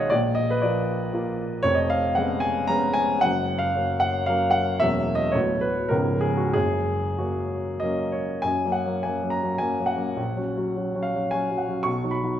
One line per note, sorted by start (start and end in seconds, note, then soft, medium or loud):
0.00 0.14 B1 medium
0.00 0.14 B2 soft
0.00 0.14 D#3 soft
0.00 0.14 G#3 soft
0.00 0.14 G#4 soft
0.00 0.14 B4 medium
0.00 0.14 C#5 medium
0.00 0.14 D#5 medium
0.00 0.14 F5 medium
0.00 0.14 F#5 medium
0.00 0.14 G#5 medium
0.10 1.62 A#1 medium
0.10 1.62 A#2 soft
0.10 0.37 D5 medium
0.35 0.49 D#5 medium
0.50 0.63 B4 medium
0.62 1.10 F3 soft
0.62 1.10 A#3 soft
0.62 1.11 F4 soft
0.62 1.39 D5 medium
1.13 1.61 F3 soft
1.13 1.61 A#3 soft
1.13 1.62 F4 medium
1.63 3.18 F1 medium
1.63 3.17 F2 medium
1.63 1.77 C#5 loud
1.75 1.90 D#5 medium
1.90 2.16 F5 medium
2.15 2.65 G#3 soft
2.15 2.65 B3 soft
2.15 2.66 C#4 soft
2.15 2.42 F#5 medium
2.40 2.68 G#5 medium
2.67 3.19 G#3 soft
2.67 3.19 B3 soft
2.67 3.19 C#4 medium
2.67 2.95 A#5 loud
2.93 3.21 G#5 medium
3.21 4.77 F#1 medium
3.21 4.77 F#2 medium
3.21 3.61 F#5 loud
3.58 4.00 F5 medium
3.75 4.24 F#3 soft
3.75 4.24 A#3 soft
3.75 4.24 C#4 soft
4.00 4.27 F#5 medium
4.26 4.77 F#3 soft
4.26 4.77 A#3 soft
4.26 4.77 C#4 medium
4.26 4.53 F5 medium
4.51 4.79 F#5 medium
4.80 5.33 E1 medium
4.80 5.33 E2 medium
4.80 5.31 F#3 soft
4.80 5.31 A#3 soft
4.80 5.32 C#4 soft
4.80 5.16 E5 medium
5.15 5.34 D#5 medium
5.32 5.91 D1 soft
5.32 5.91 D2 medium
5.32 5.88 F#3 soft
5.32 5.88 B3 soft
5.32 5.61 C#5 medium
5.61 5.91 B4 medium
5.89 6.51 C#1 medium
5.89 6.51 C#2 medium
5.89 6.49 F3 soft
5.89 6.49 B3 soft
5.89 6.49 C#4 soft
5.89 6.21 A#4 medium
6.21 6.37 G#4 medium
6.37 6.53 F#4 medium
6.53 8.42 F#1 medium
6.53 8.42 F#2 medium
6.53 7.17 G#4 medium
7.18 7.79 F#3 soft
7.18 7.79 A#3 soft
7.18 7.79 C#4 soft
7.18 8.14 F#4 medium
7.80 8.41 F#3 soft
7.80 8.41 A#3 soft
7.80 8.41 C#4 soft
7.80 8.13 D#5 medium
8.12 8.44 C#5 medium
8.42 8.64 F#2 medium
8.42 8.73 G#5 medium
8.65 8.82 F#3 soft
8.65 8.82 A#3 soft
8.65 8.83 C#4 soft
8.72 9.02 F#5 medium
8.85 9.02 F#3 soft
8.85 9.02 A#3 soft
8.85 9.03 C#4 soft
9.03 9.21 F#3 soft
9.03 9.21 A#3 soft
9.03 9.21 C#4 soft
9.03 9.31 G#5 medium
9.22 9.39 F#3 soft
9.22 9.40 A#3 soft
9.22 9.40 C#4 soft
9.30 9.59 A#5 medium
9.43 9.59 F#3 soft
9.43 9.59 A#3 soft
9.43 9.59 C#4 soft
9.58 9.77 F#3 soft
9.58 9.78 A#3 soft
9.58 9.77 C#4 soft
9.58 9.88 G#5 medium
9.79 9.94 F#3 soft
9.79 9.95 A#3 soft
9.79 9.95 C#4 soft
9.86 11.03 F#5 medium
9.96 10.14 F#3 soft
9.96 10.14 A#3 soft
9.96 10.14 C#4 soft
10.16 10.36 A#1 medium
10.36 10.54 F#3 soft
10.36 10.54 C#4 soft
10.36 10.54 F#4 soft
10.57 10.74 F#3 soft
10.57 10.74 C#4 soft
10.57 10.74 F#4 soft
10.76 10.93 F#3 soft
10.76 10.93 C#4 soft
10.76 10.94 F#4 soft
10.95 11.12 F#3 soft
10.95 11.12 C#4 soft
10.95 11.13 F#4 soft
11.03 11.32 F5 medium
11.15 11.31 F#3 soft
11.15 11.32 C#4 soft
11.15 11.32 F#4 soft
11.31 11.49 F#3 soft
11.31 11.49 C#4 soft
11.31 11.50 F#4 soft
11.31 11.59 G#5 medium
11.50 11.67 F#3 soft
11.50 11.67 C#4 soft
11.50 11.67 F#4 soft
11.58 11.86 F#5 medium
11.68 11.85 F#3 soft
11.68 11.85 C#4 soft
11.68 11.85 F#4 soft
11.83 12.04 B1 medium
11.83 12.12 C#6 medium
12.04 12.20 F#3 soft
12.04 12.21 D#4 soft
12.04 12.21 F#4 soft
12.11 12.39 B5 medium
12.22 12.39 F#3 soft
12.22 12.39 D#4 soft
12.22 12.40 F#4 soft